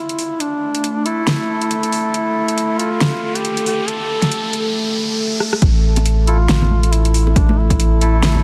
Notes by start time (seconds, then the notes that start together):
Already playing: A3 E4 A4, riser
0.09 closed hi-hat
0.19 open hi-hat
0.40 D4, closed hi-hat
0.75 closed hi-hat
0.84 closed hi-hat
1.05 A3 E4 A4, closed hi-hat
1.27 snare, closed hi-hat
1.62 closed hi-hat
1.71 closed hi-hat
1.83 closed hi-hat
1.92 open hi-hat
2.14 E4, closed hi-hat
2.48 closed hi-hat
2.58 closed hi-hat
2.79 A3 E4 F4 A4, closed hi-hat
3.01 snare, closed hi-hat
3.35 G4, closed hi-hat
3.45 closed hi-hat
3.57 closed hi-hat
3.66 G4, open hi-hat
3.88 A4, closed hi-hat
4.22 snare, closed hi-hat
4.32 closed hi-hat
4.53 closed hi-hat
5.40 cross-stick
5.53 cross-stick
5.62 A1 A3 A4, kick, closed hi-hat
5.96 closed hi-hat, high bongo
6.06 closed hi-hat
6.27 A3 E4 F4 A4, closed hi-hat
6.49 A1, snare, closed hi-hat, high conga
6.62 low conga
6.71 high conga
6.83 closed hi-hat
6.93 E4, closed hi-hat
7.05 closed hi-hat
7.14 open hi-hat
7.27 high bongo
7.36 A1 D4, kick, closed hi-hat
7.49 high conga
7.58 E4
7.70 kick, closed hi-hat, high bongo
7.80 closed hi-hat
8.01 A3 E4 A4, closed hi-hat
8.23 snare, closed hi-hat, high conga
8.35 low conga